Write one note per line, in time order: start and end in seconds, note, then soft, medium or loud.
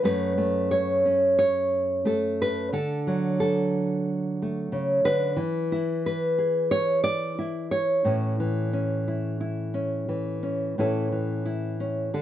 0.03 2.73 F#2 medium
0.03 0.37 A3 soft
0.03 1.04 C#4 soft
0.03 0.71 B4 medium
0.37 2.04 A3 medium
0.71 1.37 C#5 loud
1.05 2.06 C#4 soft
1.39 2.40 C#5 loud
2.05 2.69 A3 medium
2.05 2.72 A4 medium
2.42 2.73 B4 medium
2.73 4.72 D3 medium
2.73 3.39 A4 medium
3.07 5.35 F#3 medium
3.40 5.05 A4 medium
4.42 5.40 A3 soft
4.72 5.04 C#3 medium
5.05 5.38 D3 medium
5.05 6.04 B4 loud
5.36 8.05 E3 medium
5.72 7.38 E4 medium
6.06 6.71 B4 medium
6.38 8.01 G#4 soft
6.71 7.03 C#5 loud
7.04 7.71 D5 loud
7.39 8.06 E4 medium
7.71 10.77 C#5 medium
8.05 10.73 A2 medium
8.05 8.39 E3 soft
8.05 8.72 C#4 soft
8.05 9.06 E4 soft
8.40 10.07 E3 medium
8.73 9.73 C#4 soft
9.08 9.39 E4 soft
9.41 10.74 E4 soft
9.74 10.42 C#4 soft
10.09 10.78 E3 medium
10.43 10.73 C#4 soft
10.78 12.09 A2 medium
10.78 11.11 E3 soft
10.78 11.79 C#4 soft
10.78 11.44 E4 soft
10.78 12.10 A4 soft
11.12 12.13 E3 soft
11.46 12.09 E4 soft
11.80 12.09 C#4 soft
12.14 12.22 D3 medium
12.14 12.22 A4 medium